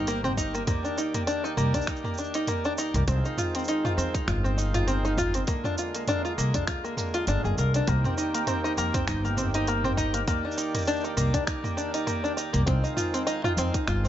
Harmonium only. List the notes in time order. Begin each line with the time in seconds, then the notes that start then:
Already playing: D#3 A#3 C4 G4
0.67 D5
3.07 D#3 G#3 C4 F4
5.48 D3 A#3
7.87 D#3 C4 G4
10.28 G4 D5
12.68 D#3 G#3 C4 F4